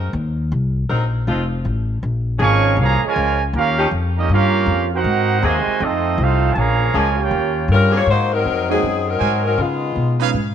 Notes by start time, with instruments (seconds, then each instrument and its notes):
Already playing: upright bass F#2, saxophone section G#3 C4 F#4 A#4
0.13 upright bass D#2
0.52 upright bass C2
0.90 upright bass A#1, saxophone section F#3 C4 D#4 A#4
1.27 upright bass F1, saxophone section F3 C4 D#4 F4
1.65 upright bass A1
2.03 upright bass A#1
2.39 upright bass G#1, saxophone section F3 A#3 C#4 G#4, trombone section F3 G#3 C#4, trumpet section A#4 F5 G#5 C#6
2.77 upright bass C2, trombone section C#3 F3 A#3
2.81 trumpet section G#4 C#5 F5 A#5
3.04 trombone section C#3 F3 G#3, trumpet section F4 A#4 C#5 G#5
3.16 upright bass C#2
3.53 upright bass D#2, trombone section A#3 F4, trumpet section C#4 G4 A#4 F5
3.58 trombone section C#4
3.79 saxophone section F3 C#4 D#4 G4
3.91 upright bass F2
4.17 trombone section G3 A#3 D#4, trumpet section C#4 G4 A#4 D#5
4.29 upright bass G2, trombone section A#3 C#4 F4, trumpet section C#4
4.33 trumpet section G4 A#4 F5
4.66 upright bass F2
4.93 trombone section C4 D#4 F#4, trumpet section D#4 A#4 C5 F#5
5.04 upright bass G#2
5.43 upright bass D#2, trombone section C3 D#3 G#3, saxophone section F#3 A#3 C4 G#4, trumpet section F#4 C5 D#5 G#5
5.67 muted upright bass stroke
5.80 upright bass F2, trombone section A3 C4 D#4, trumpet section C4 F4 A4 D#5
6.18 upright bass C2, trombone section A3 C4 F4, trumpet section D#4 A4 C5 F5
6.52 upright bass A#1, trumpet section A5
6.57 trombone section C#3 F3 A#3, trumpet section G#4 C#5 F5 A#5
6.94 upright bass C#2, trombone section C#3 F3 G#3, saxophone section F3 A#3 C#4 G#4, trumpet section F4 A#4 C#5 G#5
7.18 trombone section A#3 C#4 G4, trumpet section F4 A#4 C#5 G5
7.31 upright bass D#2
7.68 upright bass G2, saxophone section G3 A#4
7.72 saxophone section C#4 F4
7.91 saxophone section F#3 A#3 C4 G#4
7.97 saxophone section A#3 F4 G4 C#5
8.06 upright bass G#2, saxophone section A#3 D#4 F#4 C5
8.33 saxophone section F#3 C4 D#4 A#4
8.45 upright bass F2
8.69 saxophone section F#3 C4 D#4 G#4, grand piano G#3 A#3 C4 D#4 F#4
8.82 upright bass F#2
9.07 saxophone section F#3 C4 D#4 A#4
9.19 upright bass G#2, trumpet section F#4 A#4 C5 G#5
9.46 saxophone section F#3 C4 D#4 A#4
9.58 upright bass C#3, saxophone section G#3 B3 D#4 F4
9.96 upright bass B2
10.19 grand piano G#3 B3 C#4 D#4 F4, trumpet section D#4 B4 C#5 F5
10.34 upright bass G#2